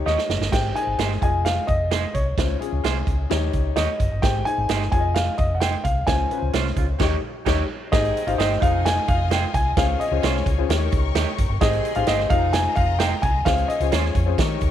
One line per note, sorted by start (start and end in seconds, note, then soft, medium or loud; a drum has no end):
0.00 0.36 D#4 medium
0.00 0.36 G4 medium
0.00 0.36 C#5 medium
0.06 0.15 D#2 medium
0.06 0.18 D#4 medium
0.06 0.18 G4 medium
0.06 0.19 C#5 medium
0.06 0.49 D#5 medium
0.06 snare medium
0.18 snare medium
0.29 0.38 F#1 medium
0.29 snare medium
0.40 0.50 G1 medium
0.40 snare medium
0.52 0.70 G#1 loud
0.52 0.70 G4 medium
0.52 0.70 G#4 medium
0.52 0.71 C5 medium
0.52 0.76 G5 loud
0.52 kick loud
0.52 snare loud
0.52 crash medium
0.75 1.21 D#4 medium
0.75 1.21 G#4 medium
0.75 0.81 A#4 medium
0.75 1.21 G#5 loud
0.75 closed hi-hat medium
0.81 1.25 C5 medium
0.87 0.96 G#1 loud
0.98 1.16 G1 medium
0.98 1.11 D#4 medium
0.98 1.11 G4 medium
0.98 1.11 C5 medium
0.98 snare loud
0.98 closed hi-hat medium
1.12 snare soft
1.21 1.57 F1 medium
1.21 1.96 F4 medium
1.21 1.96 G#4 medium
1.21 1.96 D#5 medium
1.21 1.46 G#5 medium
1.21 kick medium
1.21 closed hi-hat medium
1.45 1.66 F5 loud
1.45 snare loud
1.45 closed hi-hat medium
1.67 2.04 F1 medium
1.67 2.15 D#5 medium
1.67 kick medium
1.67 closed hi-hat medium
1.91 2.03 D#4 medium
1.91 2.03 G#4 medium
1.91 2.04 C5 medium
1.91 snare loud
1.91 closed hi-hat medium
2.14 2.32 C2 medium
2.14 3.03 C#5 medium
2.14 kick medium
2.14 closed hi-hat medium
2.37 2.55 C#2 loud
2.37 2.55 C#4 medium
2.37 2.56 F4 medium
2.37 2.56 C5 medium
2.37 kick loud
2.37 snare loud
2.37 closed hi-hat medium
2.60 3.30 C#4 medium
2.60 3.30 F4 medium
2.60 3.30 G#4 medium
2.60 closed hi-hat medium
2.72 2.81 C#2 loud
2.84 3.01 C2 medium
2.84 2.96 F4 medium
2.84 2.96 G#4 medium
2.84 2.96 C5 loud
2.84 snare loud
2.84 closed hi-hat medium
3.07 3.25 C#2 medium
3.07 kick medium
3.07 closed hi-hat medium
3.30 3.48 D#2 loud
3.30 4.04 D#4 medium
3.30 4.04 G4 medium
3.30 4.04 C#5 loud
3.30 snare loud
3.30 closed hi-hat medium
3.53 3.71 C#2 medium
3.53 kick medium
3.53 closed hi-hat medium
3.76 3.86 D#2 medium
3.76 3.88 D#4 medium
3.76 3.89 G4 loud
3.76 3.89 C#5 medium
3.76 4.24 D#5 medium
3.76 snare loud
3.76 closed hi-hat medium
4.00 4.09 F#1 medium
4.00 kick medium
4.00 closed hi-hat medium
4.12 4.20 G1 medium
4.22 4.41 G#1 loud
4.22 4.40 G4 medium
4.22 4.41 G#4 medium
4.22 4.41 C5 medium
4.22 4.46 G5 loud
4.22 kick loud
4.22 snare loud
4.22 closed hi-hat medium
4.45 4.92 D#4 medium
4.45 4.92 G#4 medium
4.45 4.93 C5 medium
4.45 4.90 G#5 loud
4.45 closed hi-hat medium
4.58 4.66 G#1 loud
4.69 4.87 G1 loud
4.69 4.81 D#4 medium
4.69 4.82 G4 medium
4.69 4.82 C5 medium
4.69 snare loud
4.69 closed hi-hat medium
4.82 snare soft
4.92 5.28 F1 loud
4.92 5.66 F4 medium
4.92 5.67 G#4 medium
4.92 4.98 C#5 medium
4.92 5.16 G#5 loud
4.92 kick loud
4.92 closed hi-hat medium
4.99 5.70 D#5 medium
5.14 5.39 F5 medium
5.14 snare loud
5.14 closed hi-hat medium
5.38 5.74 F1 medium
5.38 5.54 D#5 medium
5.38 kick medium
5.38 closed hi-hat medium
5.55 5.61 F#5 medium
5.60 5.74 D#4 medium
5.60 5.74 G#4 medium
5.60 5.74 C5 medium
5.60 5.85 G5 loud
5.60 snare loud
5.60 closed hi-hat medium
5.84 6.02 C2 medium
5.84 6.08 F5 medium
5.84 kick medium
5.84 closed hi-hat medium
6.07 6.25 C#2 loud
6.07 6.25 C#4 medium
6.07 6.25 F4 medium
6.07 6.26 C5 medium
6.07 6.50 G#5 loud
6.07 kick loud
6.07 snare loud
6.07 closed hi-hat medium
6.30 7.00 C#4 medium
6.30 7.00 F4 medium
6.30 6.37 B4 medium
6.30 closed hi-hat medium
6.37 7.03 C5 medium
6.42 6.51 C#2 loud
6.53 6.71 C2 loud
6.53 6.66 C#4 medium
6.53 6.66 F4 medium
6.53 6.66 C5 medium
6.53 snare loud
6.53 closed hi-hat medium
6.67 snare soft
6.76 6.94 C#2 medium
6.76 6.86 C#3 medium
6.76 6.86 C4 medium
6.76 6.86 F4 medium
6.76 kick medium
6.76 closed hi-hat medium
6.99 7.16 D#2 loud
6.99 7.11 D#3 medium
6.99 7.11 C#4 medium
6.99 7.16 D#4 loud
6.99 7.11 G4 medium
6.99 7.16 G4 loud
6.99 7.16 C#5 loud
6.99 7.17 C#5 loud
6.99 kick loud
6.99 snare loud
6.99 crash medium
7.46 7.62 D#2 loud
7.46 7.58 D#3 loud
7.46 7.58 C#4 medium
7.46 7.62 D#4 loud
7.46 7.58 G4 medium
7.46 7.62 G4 loud
7.46 7.62 C#5 loud
7.46 7.63 C#5 loud
7.46 kick loud
7.46 snare loud
7.46 crash medium
7.92 8.10 G#1 loud
7.92 8.25 D#3 loud
7.92 8.25 C4 loud
7.92 8.19 D#4 medium
7.92 8.61 D#4 medium
7.92 8.19 G4 medium
7.92 8.25 G#4 loud
7.92 8.20 G#4 medium
7.92 8.61 C5 medium
7.92 8.20 C5 medium
7.92 8.28 D#5 loud
7.92 8.60 G5 medium
7.92 kick loud
7.92 snare loud
7.92 closed hi-hat medium
8.05 closed hi-hat soft
8.17 closed hi-hat medium
8.27 8.36 G#1 loud
8.27 8.36 F3 medium
8.27 8.36 C#4 medium
8.27 8.60 D#4 medium
8.27 8.36 F4 medium
8.27 8.62 G4 medium
8.27 8.60 G#4 medium
8.27 8.61 C5 medium
8.27 8.32 F5 medium
8.27 closed hi-hat medium
8.38 8.56 G1 loud
8.38 8.57 D#3 loud
8.38 8.57 C4 medium
8.38 8.51 D#4 medium
8.38 8.56 G4 loud
8.38 8.51 G4 medium
8.38 8.51 C5 medium
8.38 8.62 D#5 medium
8.38 snare loud
8.38 closed hi-hat loud
8.52 snare soft
8.61 8.97 F1 medium
8.61 9.05 C3 medium
8.61 9.05 G#3 medium
8.61 9.05 D#4 loud
8.61 9.35 D#4 medium
8.61 9.35 F4 medium
8.61 9.75 F4 loud
8.61 9.35 G#4 medium
8.61 9.36 C5 medium
8.61 9.75 D#5 medium
8.61 8.86 F5 loud
8.61 9.75 G#5 loud
8.61 kick loud
8.61 closed hi-hat medium
8.86 9.09 G#5 loud
8.86 snare loud
8.86 closed hi-hat loud
9.08 9.44 F1 medium
9.08 9.30 F5 loud
9.08 kick loud
9.08 closed hi-hat medium
9.31 9.43 D#4 medium
9.31 9.43 G#4 loud
9.31 9.43 C5 loud
9.31 9.53 G5 loud
9.31 snare loud
9.31 closed hi-hat medium
9.54 9.72 C2 medium
9.54 9.76 G#5 loud
9.54 kick medium
9.54 closed hi-hat medium
9.77 9.95 C#2 loud
9.77 10.04 C#4 medium
9.77 10.04 F4 medium
9.77 10.68 F4 medium
9.77 10.04 G#4 medium
9.77 10.04 C5 medium
9.77 10.68 C#5 medium
9.77 9.98 F5 loud
9.77 10.67 G#5 medium
9.77 kick loud
9.77 snare loud
9.77 closed hi-hat medium
10.00 10.24 D#5 medium
10.00 closed hi-hat medium
10.11 10.20 C#2 loud
10.11 10.47 C#4 medium
10.11 10.47 F4 medium
10.11 10.47 G#4 medium
10.11 10.48 C5 medium
10.23 10.41 C2 loud
10.23 10.35 C#4 loud
10.23 10.35 F4 medium
10.23 10.36 C5 medium
10.23 10.88 C#5 medium
10.23 snare loud
10.23 closed hi-hat medium
10.36 snare soft
10.46 10.64 C#2 medium
10.46 kick medium
10.46 closed hi-hat medium
10.58 10.69 C#4 medium
10.58 10.70 F4 medium
10.58 10.70 G#4 medium
10.58 10.70 C5 medium
10.69 10.87 D#2 loud
10.69 11.43 D#4 medium
10.69 11.43 G4 medium
10.69 11.60 A#4 medium
10.69 11.43 A#4 medium
10.69 11.44 C#5 medium
10.69 11.60 G5 medium
10.69 11.59 C#6 loud
10.69 snare loud
10.69 closed hi-hat loud
10.92 11.10 C#2 medium
10.92 kick loud
10.92 closed hi-hat medium
11.15 11.24 D#2 loud
11.15 11.27 D#4 medium
11.15 11.27 G4 loud
11.15 11.28 C#5 medium
11.15 snare loud
11.15 closed hi-hat loud
11.38 11.47 F#1 medium
11.38 kick medium
11.38 closed hi-hat medium
11.49 11.58 G1 loud
11.60 11.79 G#1 loud
11.60 11.94 D#3 loud
11.60 11.94 C4 loud
11.60 11.88 D#4 medium
11.60 11.88 G4 medium
11.60 11.93 G#4 loud
11.60 11.88 G#4 medium
11.60 12.29 G#4 medium
11.60 11.89 C5 medium
11.60 11.97 D#5 loud
11.60 12.30 G5 medium
11.60 12.29 C6 medium
11.60 kick loud
11.60 snare loud
11.60 closed hi-hat medium
11.73 closed hi-hat soft
11.85 closed hi-hat medium
11.95 12.05 G#1 loud
11.95 12.05 F3 medium
11.95 12.05 C#4 medium
11.95 12.29 D#4 medium
11.95 12.05 F4 loud
11.95 12.31 G4 medium
11.95 12.30 G#4 medium
11.95 12.30 C5 medium
11.95 12.07 F5 medium
11.95 closed hi-hat medium
12.07 12.25 G1 medium
12.07 12.26 D#3 loud
12.07 12.26 C4 loud
12.07 12.20 D#4 medium
12.07 12.26 G4 loud
12.07 12.20 G4 medium
12.07 12.20 C5 medium
12.07 12.31 D#5 medium
12.07 snare loud
12.07 closed hi-hat loud
12.20 snare soft
12.30 12.66 F1 loud
12.30 12.74 C3 medium
12.30 12.74 G#3 medium
12.30 12.74 D#4 loud
12.30 13.04 D#4 medium
12.30 13.05 F4 medium
12.30 13.44 F4 medium
12.30 13.05 G#4 medium
12.30 13.05 C5 medium
12.30 13.44 D#5 loud
12.30 12.52 F5 loud
12.30 13.44 A#5 loud
12.30 kick loud
12.30 closed hi-hat medium
12.53 12.75 G#5 loud
12.53 snare loud
12.53 closed hi-hat medium
12.76 13.12 F1 medium
12.76 13.00 F5 loud
12.76 kick medium
12.76 closed hi-hat medium
12.99 13.12 D#4 medium
12.99 13.12 G#4 medium
12.99 13.12 C5 medium
12.99 13.21 G5 loud
12.99 snare loud
12.99 closed hi-hat loud
13.22 13.41 C2 medium
13.22 13.46 G#5 loud
13.22 kick medium
13.22 closed hi-hat medium
13.45 13.64 C#2 loud
13.45 13.73 C#4 medium
13.45 14.36 F4 medium
13.45 13.73 F4 medium
13.45 13.73 G#4 medium
13.45 13.73 C5 medium
13.45 14.36 C#5 medium
13.45 13.67 F5 loud
13.45 14.36 G#5 loud
13.45 kick loud
13.45 snare loud
13.45 closed hi-hat medium
13.58 closed hi-hat soft
13.68 13.90 D#5 medium
13.68 closed hi-hat medium
13.80 13.89 C#2 loud
13.80 14.16 C#4 medium
13.80 14.16 F4 medium
13.80 14.17 G#4 medium
13.80 14.17 C5 medium
13.80 closed hi-hat medium
13.92 14.10 D#2 loud
13.92 14.04 F4 medium
13.92 14.04 G#4 loud
13.92 14.05 C5 medium
13.92 14.57 C#5 medium
13.92 snare loud
13.92 closed hi-hat medium
14.05 snare soft
14.15 14.33 F2 medium
14.15 kick medium
14.15 closed hi-hat medium
14.26 14.38 C#4 medium
14.26 14.38 F4 medium
14.26 14.38 G#4 medium
14.26 14.38 C5 medium
14.38 14.56 D#3 loud
14.38 14.71 D#4 medium
14.38 14.71 G4 medium
14.38 14.71 A#4 medium
14.38 14.71 C#5 medium
14.38 14.71 G5 medium
14.38 14.71 C#6 medium
14.38 kick loud
14.38 snare loud
14.38 closed hi-hat medium
14.61 14.71 D#2 medium
14.61 kick medium
14.61 closed hi-hat medium